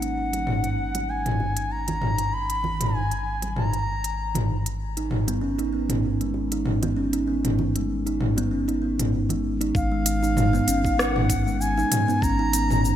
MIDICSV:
0, 0, Header, 1, 5, 480
1, 0, Start_track
1, 0, Tempo, 618557
1, 1807, Time_signature, 4, 2, 24, 8
1, 10056, End_track
2, 0, Start_track
2, 0, Title_t, "Bansuri"
2, 0, Program_c, 0, 73
2, 0, Note_on_c, 0, 78, 86
2, 854, Note_on_c, 0, 80, 81
2, 866, Note_off_c, 0, 78, 0
2, 1333, Note_on_c, 0, 82, 89
2, 1344, Note_off_c, 0, 80, 0
2, 1813, Note_on_c, 0, 83, 106
2, 1824, Note_off_c, 0, 82, 0
2, 2293, Note_on_c, 0, 80, 90
2, 2304, Note_off_c, 0, 83, 0
2, 2764, Note_off_c, 0, 80, 0
2, 2769, Note_on_c, 0, 82, 85
2, 3457, Note_off_c, 0, 82, 0
2, 7567, Note_on_c, 0, 77, 99
2, 8524, Note_on_c, 0, 78, 96
2, 8536, Note_off_c, 0, 77, 0
2, 9008, Note_on_c, 0, 80, 97
2, 9019, Note_off_c, 0, 78, 0
2, 9486, Note_on_c, 0, 82, 117
2, 9498, Note_off_c, 0, 80, 0
2, 10056, Note_off_c, 0, 82, 0
2, 10056, End_track
3, 0, Start_track
3, 0, Title_t, "Kalimba"
3, 0, Program_c, 1, 108
3, 3856, Note_on_c, 1, 63, 83
3, 3919, Note_off_c, 1, 63, 0
3, 4095, Note_on_c, 1, 59, 86
3, 4199, Note_off_c, 1, 59, 0
3, 4201, Note_on_c, 1, 61, 69
3, 4329, Note_off_c, 1, 61, 0
3, 4334, Note_on_c, 1, 63, 90
3, 4439, Note_off_c, 1, 63, 0
3, 4444, Note_on_c, 1, 59, 65
3, 4570, Note_off_c, 1, 59, 0
3, 4819, Note_on_c, 1, 56, 67
3, 4921, Note_off_c, 1, 56, 0
3, 5061, Note_on_c, 1, 63, 83
3, 5121, Note_off_c, 1, 63, 0
3, 5298, Note_on_c, 1, 59, 85
3, 5401, Note_off_c, 1, 59, 0
3, 5406, Note_on_c, 1, 61, 65
3, 5531, Note_off_c, 1, 61, 0
3, 5535, Note_on_c, 1, 63, 87
3, 5639, Note_off_c, 1, 63, 0
3, 5646, Note_on_c, 1, 59, 69
3, 5771, Note_off_c, 1, 59, 0
3, 6020, Note_on_c, 1, 56, 61
3, 6122, Note_off_c, 1, 56, 0
3, 6258, Note_on_c, 1, 63, 91
3, 6320, Note_off_c, 1, 63, 0
3, 6498, Note_on_c, 1, 59, 95
3, 6601, Note_off_c, 1, 59, 0
3, 6606, Note_on_c, 1, 61, 65
3, 6731, Note_off_c, 1, 61, 0
3, 6736, Note_on_c, 1, 63, 88
3, 6840, Note_off_c, 1, 63, 0
3, 6843, Note_on_c, 1, 59, 69
3, 6970, Note_off_c, 1, 59, 0
3, 7216, Note_on_c, 1, 56, 64
3, 7320, Note_off_c, 1, 56, 0
3, 7456, Note_on_c, 1, 63, 90
3, 7519, Note_off_c, 1, 63, 0
3, 7696, Note_on_c, 1, 56, 75
3, 7800, Note_off_c, 1, 56, 0
3, 7936, Note_on_c, 1, 63, 91
3, 7999, Note_off_c, 1, 63, 0
3, 8174, Note_on_c, 1, 59, 98
3, 8279, Note_off_c, 1, 59, 0
3, 8285, Note_on_c, 1, 61, 74
3, 8411, Note_off_c, 1, 61, 0
3, 8416, Note_on_c, 1, 63, 95
3, 8520, Note_off_c, 1, 63, 0
3, 8524, Note_on_c, 1, 59, 82
3, 8650, Note_off_c, 1, 59, 0
3, 8896, Note_on_c, 1, 56, 78
3, 9000, Note_off_c, 1, 56, 0
3, 9138, Note_on_c, 1, 63, 99
3, 9200, Note_off_c, 1, 63, 0
3, 9377, Note_on_c, 1, 59, 99
3, 9480, Note_off_c, 1, 59, 0
3, 9485, Note_on_c, 1, 61, 80
3, 9611, Note_off_c, 1, 61, 0
3, 9616, Note_on_c, 1, 63, 100
3, 9720, Note_off_c, 1, 63, 0
3, 9725, Note_on_c, 1, 59, 83
3, 9851, Note_off_c, 1, 59, 0
3, 10056, End_track
4, 0, Start_track
4, 0, Title_t, "Sub bass"
4, 0, Program_c, 2, 38
4, 0, Note_on_c, 2, 32, 84
4, 7544, Note_off_c, 2, 32, 0
4, 7565, Note_on_c, 2, 32, 104
4, 8233, Note_off_c, 2, 32, 0
4, 8286, Note_on_c, 2, 32, 76
4, 9193, Note_off_c, 2, 32, 0
4, 9485, Note_on_c, 2, 32, 109
4, 10056, Note_off_c, 2, 32, 0
4, 10056, End_track
5, 0, Start_track
5, 0, Title_t, "Drums"
5, 18, Note_on_c, 9, 42, 40
5, 96, Note_off_c, 9, 42, 0
5, 255, Note_on_c, 9, 63, 58
5, 259, Note_on_c, 9, 42, 50
5, 262, Note_on_c, 9, 60, 31
5, 333, Note_off_c, 9, 63, 0
5, 337, Note_off_c, 9, 42, 0
5, 339, Note_off_c, 9, 60, 0
5, 364, Note_on_c, 9, 45, 64
5, 442, Note_off_c, 9, 45, 0
5, 496, Note_on_c, 9, 42, 28
5, 573, Note_off_c, 9, 42, 0
5, 735, Note_on_c, 9, 42, 48
5, 735, Note_on_c, 9, 63, 59
5, 738, Note_on_c, 9, 60, 46
5, 813, Note_off_c, 9, 42, 0
5, 813, Note_off_c, 9, 63, 0
5, 815, Note_off_c, 9, 60, 0
5, 977, Note_on_c, 9, 42, 30
5, 977, Note_on_c, 9, 45, 65
5, 1054, Note_off_c, 9, 42, 0
5, 1054, Note_off_c, 9, 45, 0
5, 1086, Note_on_c, 9, 60, 44
5, 1163, Note_off_c, 9, 60, 0
5, 1215, Note_on_c, 9, 42, 49
5, 1293, Note_off_c, 9, 42, 0
5, 1457, Note_on_c, 9, 42, 41
5, 1460, Note_on_c, 9, 60, 47
5, 1460, Note_on_c, 9, 64, 73
5, 1535, Note_off_c, 9, 42, 0
5, 1538, Note_off_c, 9, 60, 0
5, 1538, Note_off_c, 9, 64, 0
5, 1564, Note_on_c, 9, 45, 61
5, 1642, Note_off_c, 9, 45, 0
5, 1695, Note_on_c, 9, 42, 47
5, 1773, Note_off_c, 9, 42, 0
5, 1938, Note_on_c, 9, 42, 41
5, 2016, Note_off_c, 9, 42, 0
5, 2047, Note_on_c, 9, 64, 82
5, 2125, Note_off_c, 9, 64, 0
5, 2174, Note_on_c, 9, 60, 32
5, 2178, Note_on_c, 9, 42, 47
5, 2178, Note_on_c, 9, 45, 66
5, 2252, Note_off_c, 9, 60, 0
5, 2256, Note_off_c, 9, 42, 0
5, 2256, Note_off_c, 9, 45, 0
5, 2417, Note_on_c, 9, 42, 30
5, 2494, Note_off_c, 9, 42, 0
5, 2656, Note_on_c, 9, 60, 44
5, 2657, Note_on_c, 9, 42, 45
5, 2662, Note_on_c, 9, 63, 60
5, 2733, Note_off_c, 9, 60, 0
5, 2735, Note_off_c, 9, 42, 0
5, 2740, Note_off_c, 9, 63, 0
5, 2766, Note_on_c, 9, 45, 65
5, 2843, Note_off_c, 9, 45, 0
5, 2898, Note_on_c, 9, 42, 28
5, 2976, Note_off_c, 9, 42, 0
5, 3137, Note_on_c, 9, 42, 45
5, 3215, Note_off_c, 9, 42, 0
5, 3372, Note_on_c, 9, 64, 74
5, 3378, Note_on_c, 9, 42, 38
5, 3378, Note_on_c, 9, 45, 68
5, 3450, Note_off_c, 9, 64, 0
5, 3456, Note_off_c, 9, 42, 0
5, 3456, Note_off_c, 9, 45, 0
5, 3618, Note_on_c, 9, 42, 48
5, 3695, Note_off_c, 9, 42, 0
5, 3857, Note_on_c, 9, 42, 38
5, 3935, Note_off_c, 9, 42, 0
5, 3964, Note_on_c, 9, 45, 67
5, 4041, Note_off_c, 9, 45, 0
5, 4096, Note_on_c, 9, 63, 58
5, 4098, Note_on_c, 9, 42, 51
5, 4104, Note_on_c, 9, 60, 31
5, 4173, Note_off_c, 9, 63, 0
5, 4175, Note_off_c, 9, 42, 0
5, 4182, Note_off_c, 9, 60, 0
5, 4338, Note_on_c, 9, 42, 28
5, 4416, Note_off_c, 9, 42, 0
5, 4570, Note_on_c, 9, 63, 63
5, 4576, Note_on_c, 9, 42, 48
5, 4576, Note_on_c, 9, 45, 61
5, 4579, Note_on_c, 9, 60, 43
5, 4648, Note_off_c, 9, 63, 0
5, 4653, Note_off_c, 9, 42, 0
5, 4653, Note_off_c, 9, 45, 0
5, 4657, Note_off_c, 9, 60, 0
5, 4818, Note_on_c, 9, 42, 27
5, 4896, Note_off_c, 9, 42, 0
5, 4920, Note_on_c, 9, 60, 47
5, 4998, Note_off_c, 9, 60, 0
5, 5058, Note_on_c, 9, 42, 44
5, 5135, Note_off_c, 9, 42, 0
5, 5164, Note_on_c, 9, 45, 66
5, 5242, Note_off_c, 9, 45, 0
5, 5296, Note_on_c, 9, 60, 45
5, 5296, Note_on_c, 9, 64, 86
5, 5297, Note_on_c, 9, 42, 40
5, 5373, Note_off_c, 9, 64, 0
5, 5374, Note_off_c, 9, 60, 0
5, 5375, Note_off_c, 9, 42, 0
5, 5534, Note_on_c, 9, 42, 49
5, 5612, Note_off_c, 9, 42, 0
5, 5779, Note_on_c, 9, 42, 36
5, 5779, Note_on_c, 9, 45, 72
5, 5856, Note_off_c, 9, 42, 0
5, 5856, Note_off_c, 9, 45, 0
5, 5887, Note_on_c, 9, 64, 82
5, 5965, Note_off_c, 9, 64, 0
5, 6015, Note_on_c, 9, 63, 53
5, 6018, Note_on_c, 9, 60, 28
5, 6019, Note_on_c, 9, 42, 49
5, 6092, Note_off_c, 9, 63, 0
5, 6095, Note_off_c, 9, 60, 0
5, 6096, Note_off_c, 9, 42, 0
5, 6260, Note_on_c, 9, 42, 26
5, 6338, Note_off_c, 9, 42, 0
5, 6367, Note_on_c, 9, 45, 69
5, 6445, Note_off_c, 9, 45, 0
5, 6490, Note_on_c, 9, 60, 47
5, 6499, Note_on_c, 9, 63, 54
5, 6502, Note_on_c, 9, 42, 46
5, 6568, Note_off_c, 9, 60, 0
5, 6577, Note_off_c, 9, 63, 0
5, 6579, Note_off_c, 9, 42, 0
5, 6741, Note_on_c, 9, 42, 26
5, 6818, Note_off_c, 9, 42, 0
5, 6980, Note_on_c, 9, 42, 50
5, 6980, Note_on_c, 9, 45, 65
5, 7058, Note_off_c, 9, 42, 0
5, 7058, Note_off_c, 9, 45, 0
5, 7212, Note_on_c, 9, 64, 78
5, 7218, Note_on_c, 9, 42, 38
5, 7290, Note_off_c, 9, 64, 0
5, 7296, Note_off_c, 9, 42, 0
5, 7460, Note_on_c, 9, 42, 49
5, 7537, Note_off_c, 9, 42, 0
5, 7565, Note_on_c, 9, 36, 118
5, 7571, Note_on_c, 9, 69, 41
5, 7642, Note_off_c, 9, 36, 0
5, 7649, Note_off_c, 9, 69, 0
5, 7806, Note_on_c, 9, 42, 96
5, 7809, Note_on_c, 9, 69, 79
5, 7883, Note_off_c, 9, 42, 0
5, 7887, Note_off_c, 9, 69, 0
5, 7943, Note_on_c, 9, 69, 35
5, 8020, Note_off_c, 9, 69, 0
5, 8046, Note_on_c, 9, 45, 84
5, 8050, Note_on_c, 9, 69, 46
5, 8124, Note_off_c, 9, 45, 0
5, 8128, Note_off_c, 9, 69, 0
5, 8182, Note_on_c, 9, 69, 32
5, 8260, Note_off_c, 9, 69, 0
5, 8286, Note_on_c, 9, 42, 93
5, 8289, Note_on_c, 9, 69, 82
5, 8363, Note_off_c, 9, 42, 0
5, 8367, Note_off_c, 9, 69, 0
5, 8417, Note_on_c, 9, 36, 103
5, 8424, Note_on_c, 9, 69, 32
5, 8494, Note_off_c, 9, 36, 0
5, 8502, Note_off_c, 9, 69, 0
5, 8531, Note_on_c, 9, 37, 79
5, 8535, Note_on_c, 9, 69, 44
5, 8609, Note_off_c, 9, 37, 0
5, 8612, Note_off_c, 9, 69, 0
5, 8660, Note_on_c, 9, 45, 82
5, 8738, Note_off_c, 9, 45, 0
5, 8765, Note_on_c, 9, 36, 109
5, 8767, Note_on_c, 9, 42, 93
5, 8771, Note_on_c, 9, 69, 75
5, 8843, Note_off_c, 9, 36, 0
5, 8845, Note_off_c, 9, 42, 0
5, 8848, Note_off_c, 9, 69, 0
5, 8904, Note_on_c, 9, 69, 32
5, 8982, Note_off_c, 9, 69, 0
5, 9011, Note_on_c, 9, 69, 45
5, 9088, Note_off_c, 9, 69, 0
5, 9145, Note_on_c, 9, 69, 30
5, 9222, Note_off_c, 9, 69, 0
5, 9247, Note_on_c, 9, 42, 94
5, 9247, Note_on_c, 9, 45, 75
5, 9251, Note_on_c, 9, 69, 78
5, 9325, Note_off_c, 9, 42, 0
5, 9325, Note_off_c, 9, 45, 0
5, 9328, Note_off_c, 9, 69, 0
5, 9384, Note_on_c, 9, 69, 32
5, 9462, Note_off_c, 9, 69, 0
5, 9484, Note_on_c, 9, 36, 127
5, 9493, Note_on_c, 9, 69, 44
5, 9562, Note_off_c, 9, 36, 0
5, 9570, Note_off_c, 9, 69, 0
5, 9727, Note_on_c, 9, 42, 91
5, 9730, Note_on_c, 9, 69, 84
5, 9804, Note_off_c, 9, 42, 0
5, 9808, Note_off_c, 9, 69, 0
5, 9858, Note_on_c, 9, 45, 74
5, 9862, Note_on_c, 9, 69, 37
5, 9936, Note_off_c, 9, 45, 0
5, 9940, Note_off_c, 9, 69, 0
5, 9970, Note_on_c, 9, 69, 48
5, 10048, Note_off_c, 9, 69, 0
5, 10056, End_track
0, 0, End_of_file